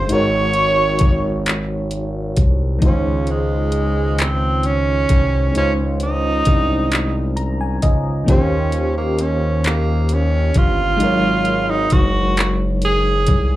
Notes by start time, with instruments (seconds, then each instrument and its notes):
Already playing: fm electric piano C5
0.04 fm electric piano G#3, tenor saxophone C5
0.09 analog synth bass G#1, fm electric piano D#4 F#4, tenor saxophone C#5, closed hi-hat
0.13 fm electric piano A#4 C#5
0.54 closed hi-hat
0.99 kick, closed hi-hat
1.46 clap, closed hi-hat
1.91 closed hi-hat
2.37 analog synth bass C2, kick, closed hi-hat
2.79 analog synth bass C#2, fm electric piano D#3 G#3 D#4, kick, closed hi-hat
2.84 tenor saxophone C#4, fm electric piano F4 C5
3.27 tenor saxophone G#3, closed hi-hat
3.72 closed hi-hat
4.19 tenor saxophone C4, clap, closed hi-hat
4.63 tenor saxophone C#4, closed hi-hat
5.09 analog synth bass C2, kick, closed hi-hat
5.52 fm electric piano G#3 C#4 D#4, closed hi-hat
5.56 analog synth bass C#2, tenor saxophone C#4, fm electric piano F4 C5
6.00 tenor saxophone D#4, closed hi-hat
6.45 analog synth bass C2, kick, closed hi-hat
6.92 clap, closed hi-hat
7.36 fm electric piano A#5, closed hi-hat
7.61 fm electric piano G#5
7.82 analog synth bass C#2, fm electric piano D#5, kick, closed hi-hat
8.24 fm electric piano D#3 A#3 C#4, kick, closed hi-hat
8.28 analog synth bass D#2, tenor saxophone C#4, fm electric piano F4 G4 C5
8.72 closed hi-hat
8.97 tenor saxophone A#3
9.19 tenor saxophone C#4, closed hi-hat
9.64 tenor saxophone A#3, clap, closed hi-hat
10.09 closed hi-hat
10.13 tenor saxophone C#4
10.54 analog synth bass G1, tenor saxophone F4, kick, closed hi-hat
10.97 fm electric piano F#3 G#3 D#4, closed hi-hat
11.02 analog synth bass G#1, fm electric piano A#4 C#5
11.45 closed hi-hat
11.70 tenor saxophone D#4
11.90 analog synth bass F#1, tenor saxophone F#4, kick, closed hi-hat
12.37 clap, closed hi-hat
12.82 tenor saxophone G#4, closed hi-hat
13.27 analog synth bass C2, kick, closed hi-hat